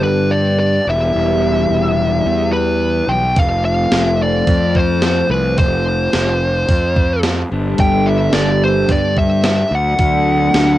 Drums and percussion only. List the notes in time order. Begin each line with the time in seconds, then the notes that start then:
3.36 kick, open hi-hat
3.92 snare, open hi-hat
4.47 kick, open hi-hat
4.75 kick
5.02 snare, open hi-hat
5.58 kick, open hi-hat
6.13 snare, open hi-hat
6.69 kick, open hi-hat
6.96 kick
7.23 snare, open hi-hat
7.78 kick, open hi-hat
8.33 snare, open hi-hat
8.89 kick, open hi-hat
9.17 kick
9.44 snare, open hi-hat
9.99 kick, open hi-hat
10.54 snare, open hi-hat